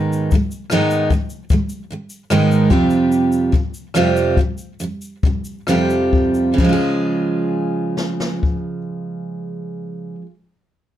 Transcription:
Already playing: G#2 D#3 G#3 B3 D#4 A#4
0.13 shaker
0.31 G#2 D#3 G#3, kick, shaker
0.51 shaker
0.70 G#2 D#3 G#3 B3 D#4 A#4, cross-stick, shaker
0.91 shaker
1.10 G#2 D#3 G#3, kick, shaker
1.30 shaker
1.50 G#2 D#3 G#3, kick, shaker
1.69 shaker
1.90 G#2 D#3 G#3
2.10 shaker
2.30 G#2 D#3 G#3 B3 D#4 A#4, cross-stick, shaker
2.51 shaker
2.70 F2 C3 G3 C4 F4 G4, kick
2.90 shaker
3.12 shaker
3.32 shaker
3.52 F2 G3, kick
3.74 shaker
3.94 F2 C3 G3 C4 F4 G4, cross-stick, shaker
4.16 shaker
4.37 F2 C3, kick
4.58 shaker
4.80 F2 C3 G3, shaker
5.02 shaker
5.23 F2 C3 G3, kick
5.45 shaker
5.67 F2 C3 G3 C4 F4 G4, cross-stick, shaker
5.90 shaker
6.13 kick
6.34 shaker
6.54 C#3
6.58 F3, kick, crash
6.64 G#3
6.69 F4 G#4
7.97 snare
8.20 snare
8.43 kick

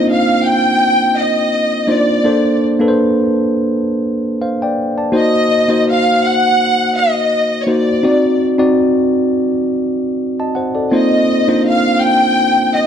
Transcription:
Already playing: A#3 C4 D4 D#4 F4 C5
0.11 F5
0.46 G5
1.18 D#5
1.87 A#3 D4 D#4 F4 C5 D5
2.24 A#3 D4 A4 C5
2.79 A#3 D4 A4 B4
2.88 C5
4.42 C5 F5
4.62 D5 G5
4.98 D5 A5
5.12 A#3 D#4 F#4 C5
5.17 D#5
5.68 A#3 D#4 F#4 C5
5.90 F5
6.26 F#5
6.98 D#5
7.62 C#5
7.67 A#3 D#4 F#4 C5 D5
8.03 C4 D#4 F#4 D5
8.58 C4 D#4 F#4 D5
10.40 D#5 A5
10.55 C5 F#5
10.75 A4 D5
10.91 A#3 C4 D#4 F4 C5 D#5
11.48 A#3 D4 D#4 F4 C5
11.67 F5
12.02 G5
12.76 D#5

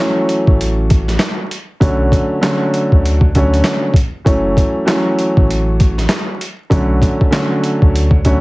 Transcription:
Already playing: E3 F#3 A3 C#4
0.29 closed hi-hat
0.47 A1, kick
0.61 closed hi-hat
0.90 kick, closed hi-hat
1.08 snare, closed hi-hat
1.19 snare, clap, closed hi-hat
1.51 closed hi-hat
1.80 B1 D3 F#3 A3 C#4, kick, closed hi-hat
2.12 kick, closed hi-hat
2.41 D3 F#3 A3 C#4, snare, clap, closed hi-hat
2.74 closed hi-hat
2.92 D2, kick
3.06 closed hi-hat
3.21 kick
3.35 D3 F#3 A3 C#4, kick, closed hi-hat
3.54 closed hi-hat
3.64 snare, clap, closed hi-hat
3.94 kick, closed hi-hat
4.24 F#1 E3 F#3 A3 C#4, kick, closed hi-hat
4.57 kick, closed hi-hat
4.85 E3 F#3 A3 C#4, snare, clap, closed hi-hat
5.19 closed hi-hat
5.37 A1, kick
5.51 closed hi-hat
5.80 kick, closed hi-hat
5.98 snare, closed hi-hat
6.09 snare, clap, closed hi-hat
6.41 closed hi-hat
6.70 B1 D3 F#3 A3 C#4, kick, closed hi-hat
7.02 kick, closed hi-hat
7.21 kick
7.31 D3 F#3 A3 C#4, snare, clap, closed hi-hat
7.64 closed hi-hat
7.82 D2, kick
7.95 closed hi-hat
8.11 kick
8.25 D3 F#3 A3 C#4, kick, closed hi-hat

